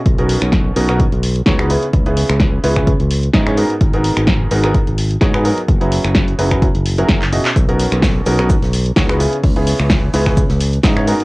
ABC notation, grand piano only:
X:1
M:4/4
L:1/16
Q:"Swing 16ths" 1/4=128
K:C#dor
V:1 name="Grand piano"
z [B,,B,CDFA]4- [B,,B,CDFA] [B,,B,CDFA] [B,,B,CDFA] z4 [C,B,CDFc] [C,B,CDFB] [C,B,CEGB] z | z [C,B,CEGB]4- [C,B,CEGB] [C,B,CEGB] [C,B,CEGB] z4 [G,,B,CEGd] [G,,B,CEGc] [G,,B,DFGA] z | z [G,,B,DFGA]4- [G,,B,DFGA] [G,,B,DFGA] [G,,B,DFGA] z4 [G,,B,DFGc] [G,,B,DFGB] [F,B,DFGA] z | z [F,CEFGB]4- [F,CEFGB] [F,CEFGB] [F,CEFGB] z3 [F,CEFGA]2 z [B,,CEFGd] z |
z [B,,B,CDFA]4- [B,,B,CDFA] [B,,B,CDFA] [B,,B,CDFA] z4 [C,B,CDFc] [C,B,CDFB] [C,B,CEGB] z | z [C,B,CEGB]4- [C,B,CEGB] [C,B,CEGB] [C,B,CEGB] z4 [G,,B,CEGd] [G,,B,CEGc] [G,,B,DFGA] z |]